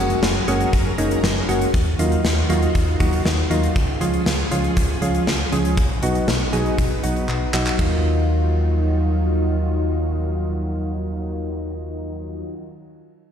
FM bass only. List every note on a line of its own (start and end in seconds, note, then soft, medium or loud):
0.00 0.15 F#1 medium
0.23 0.40 F#1 loud
0.48 0.66 F#1 loud
0.73 0.91 F#1 loud
0.98 1.16 F#1 loud
1.23 1.41 F#1 loud
1.49 1.66 F#1 loud
1.74 1.92 D#2 loud
1.99 2.17 D#2 loud
2.25 2.42 D#2 loud
2.50 2.67 D#2 loud
2.75 2.93 D#2 loud
3.00 3.18 D#2 loud
3.25 3.43 D#2 loud
3.51 3.68 D#2 loud
3.76 3.94 C#2 loud
4.01 4.19 C#2 loud
4.26 4.44 C#2 loud
4.51 4.69 C#2 loud
4.77 4.94 C#2 loud
5.02 5.20 C#2 loud
5.27 5.45 C#2 loud
5.52 5.79 C#2 loud
5.77 5.95 B1 loud
6.02 6.20 B1 medium
6.28 6.45 B1 loud
6.53 6.71 B1 loud
6.78 6.96 B1 loud
7.03 7.21 B1 medium
7.29 7.46 B1 loud
7.54 7.71 B1 loud
7.79 12.44 D#2 loud